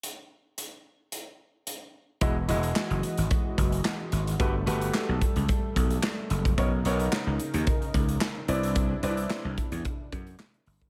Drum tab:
HH |x---x---x---x---|x-xx-xxxx-xx--xx|x-xx--xxx-xx--xx|x-xx--xxxxxx--xx|
CP |----------------|----x-------x---|----x-------x---|----x-------x---|
SD |----------------|----o-------o---|----o-------o---|----o-------o---|
BD |----------------|o-------o-o-----|o-----o-o-o----o|o-------o-o-----|

HH |x-xx--xxx-xx-xox|
CP |----x-------x---|
SD |----o-------o---|
BD |o-----o-o-o----o|